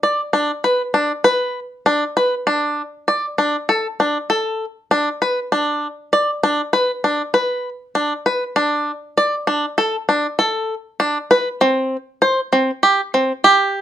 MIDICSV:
0, 0, Header, 1, 2, 480
1, 0, Start_track
1, 0, Tempo, 609756
1, 1944, Time_signature, 5, 2, 24, 8
1, 10876, End_track
2, 0, Start_track
2, 0, Title_t, "Five-string banjo"
2, 0, Program_c, 0, 105
2, 26, Note_on_c, 0, 74, 61
2, 162, Note_off_c, 0, 74, 0
2, 262, Note_on_c, 0, 62, 65
2, 399, Note_off_c, 0, 62, 0
2, 505, Note_on_c, 0, 71, 64
2, 641, Note_off_c, 0, 71, 0
2, 740, Note_on_c, 0, 62, 61
2, 877, Note_off_c, 0, 62, 0
2, 979, Note_on_c, 0, 71, 77
2, 1252, Note_off_c, 0, 71, 0
2, 1464, Note_on_c, 0, 62, 66
2, 1600, Note_off_c, 0, 62, 0
2, 1706, Note_on_c, 0, 71, 68
2, 1841, Note_off_c, 0, 71, 0
2, 1943, Note_on_c, 0, 62, 71
2, 2215, Note_off_c, 0, 62, 0
2, 2424, Note_on_c, 0, 74, 68
2, 2560, Note_off_c, 0, 74, 0
2, 2663, Note_on_c, 0, 62, 66
2, 2799, Note_off_c, 0, 62, 0
2, 2904, Note_on_c, 0, 69, 71
2, 3040, Note_off_c, 0, 69, 0
2, 3148, Note_on_c, 0, 62, 60
2, 3283, Note_off_c, 0, 62, 0
2, 3383, Note_on_c, 0, 69, 74
2, 3655, Note_off_c, 0, 69, 0
2, 3866, Note_on_c, 0, 62, 69
2, 4001, Note_off_c, 0, 62, 0
2, 4107, Note_on_c, 0, 71, 62
2, 4242, Note_off_c, 0, 71, 0
2, 4346, Note_on_c, 0, 62, 72
2, 4617, Note_off_c, 0, 62, 0
2, 4824, Note_on_c, 0, 74, 67
2, 4960, Note_off_c, 0, 74, 0
2, 5065, Note_on_c, 0, 62, 65
2, 5201, Note_off_c, 0, 62, 0
2, 5299, Note_on_c, 0, 71, 68
2, 5436, Note_off_c, 0, 71, 0
2, 5543, Note_on_c, 0, 62, 61
2, 5679, Note_off_c, 0, 62, 0
2, 5777, Note_on_c, 0, 71, 71
2, 6051, Note_off_c, 0, 71, 0
2, 6259, Note_on_c, 0, 62, 68
2, 6397, Note_off_c, 0, 62, 0
2, 6502, Note_on_c, 0, 71, 63
2, 6639, Note_off_c, 0, 71, 0
2, 6738, Note_on_c, 0, 62, 74
2, 7012, Note_off_c, 0, 62, 0
2, 7223, Note_on_c, 0, 74, 65
2, 7359, Note_off_c, 0, 74, 0
2, 7457, Note_on_c, 0, 62, 68
2, 7595, Note_off_c, 0, 62, 0
2, 7698, Note_on_c, 0, 69, 71
2, 7836, Note_off_c, 0, 69, 0
2, 7941, Note_on_c, 0, 62, 61
2, 8078, Note_off_c, 0, 62, 0
2, 8177, Note_on_c, 0, 69, 83
2, 8451, Note_off_c, 0, 69, 0
2, 8658, Note_on_c, 0, 62, 70
2, 8796, Note_off_c, 0, 62, 0
2, 8901, Note_on_c, 0, 71, 71
2, 9038, Note_off_c, 0, 71, 0
2, 9140, Note_on_c, 0, 60, 78
2, 9413, Note_off_c, 0, 60, 0
2, 9618, Note_on_c, 0, 72, 69
2, 9756, Note_off_c, 0, 72, 0
2, 9860, Note_on_c, 0, 60, 72
2, 9998, Note_off_c, 0, 60, 0
2, 10100, Note_on_c, 0, 67, 73
2, 10238, Note_off_c, 0, 67, 0
2, 10344, Note_on_c, 0, 60, 65
2, 10481, Note_off_c, 0, 60, 0
2, 10581, Note_on_c, 0, 67, 81
2, 10855, Note_off_c, 0, 67, 0
2, 10876, End_track
0, 0, End_of_file